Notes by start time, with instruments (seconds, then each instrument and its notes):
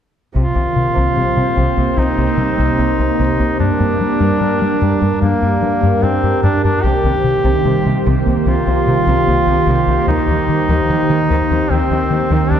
0.34 analog synth bass C2, cello section C3, synth pluck C3, ambient pad A#3 C4 G4 C5, duduk F4
0.55 analog synth bass C2, cello section C3, synth pluck D#3
0.76 analog synth bass C3
0.95 analog synth bass C2, cello section C3, synth pluck C3
1.16 cello section C3, analog synth bass C3, synth pluck G3
1.36 cello section C3, analog synth bass C3, synth pluck G3
1.57 analog synth bass C2, cello section C3, synth pluck C3
1.77 analog synth bass C2, cello section C3, synth pluck A#3
1.97 analog synth bass C2, synth pluck C3, cello section C3, duduk D#4
2.17 analog synth bass C2, cello section C3, synth pluck A#3
2.37 cello section C3, analog synth bass C3, synth pluck G3
2.57 analog synth bass C2, cello section C3, synth pluck C3
2.78 analog synth bass C2, cello section C3, synth pluck A#3
2.98 analog synth bass C2, cello section C3, synth pluck A#3
3.18 analog synth bass C2, cello section C3, synth pluck C3
3.38 analog synth bass C2, cello section C3, synth pluck A#3
3.58 cello section G2, analog synth bass G2, synth pluck G3, ambient pad D4 A#4, duduk D4
3.79 cello section G2, analog synth bass G2, synth pluck A#3
4.01 analog synth bass G3
4.20 cello section G2, analog synth bass G2, synth pluck G3
4.41 cello section G2, analog synth bass G3, synth pluck D4
4.60 cello section G2, analog synth bass G3, synth pluck D4
4.81 cello section G2, analog synth bass G2, synth pluck G3
5.01 cello section G2, analog synth bass G2, synth pluck G4
5.21 cello section G2, analog synth bass G2, synth pluck G3, duduk A#3
5.41 cello section G2, analog synth bass G2, synth pluck G4
5.62 cello section G2, analog synth bass G3, synth pluck D4
5.82 cello section G2, analog synth bass G2, synth pluck G3
6.02 cello section G2, analog synth bass G2, duduk C4, synth pluck G4
6.23 cello section G2, analog synth bass G2, synth pluck G4
6.43 cello section G2, analog synth bass G2, synth pluck G3, duduk D4
6.63 cello section G2, analog synth bass G2, duduk D4, synth pluck G4
6.82 analog synth bass C2, synth pluck C3, cello section C3, ambient pad D#3 A#3 G4 C5, duduk G4
7.04 analog synth bass C2, cello section C3, synth pluck D#3
7.24 analog synth bass C3
7.44 analog synth bass C2, synth pluck C3, cello section C3
7.65 analog synth bass C3, cello section C3, synth pluck G3
7.85 cello section C3, analog synth bass C3, synth pluck G3
8.05 analog synth bass C2, synth pluck C3, cello section C3
8.26 analog synth bass C2, cello section C3, synth pluck A#3
8.45 analog synth bass C2, synth pluck C3, cello section C3, duduk F4
8.66 analog synth bass C2, cello section C3, synth pluck A#3
8.86 cello section C3, analog synth bass C3, synth pluck G3
9.06 analog synth bass C2, synth pluck C3, cello section C3
9.27 analog synth bass C2, cello section C3, synth pluck A#3
9.47 analog synth bass C2, cello section C3, synth pluck A#3
9.66 analog synth bass C2, synth pluck C3, cello section C3
9.87 analog synth bass C2, cello section C3, synth pluck A#3
10.07 analog synth bass D#2, synth pluck D#3, cello section D#3, duduk D#4
10.28 analog synth bass D#2, cello section D#3, synth pluck G3
10.49 analog synth bass D#3
10.68 analog synth bass D#2, synth pluck D#3, cello section D#3
10.89 analog synth bass D#3, cello section D#3, synth pluck A#3
11.09 analog synth bass D#3, cello section D#3, synth pluck A#3
11.29 analog synth bass D#2, synth pluck D#3, cello section D#3
11.50 analog synth bass D#2, cello section D#3, synth pluck C4
11.70 analog synth bass D#2, synth pluck D#3, cello section D#3, duduk C4
11.90 analog synth bass D#2, cello section D#3, synth pluck C4
12.10 analog synth bass D#3, cello section D#3, synth pluck A#3
12.31 analog synth bass D#2, synth pluck D#3, cello section D#3
12.51 analog synth bass D#2, cello section D#3, synth pluck C4, duduk D4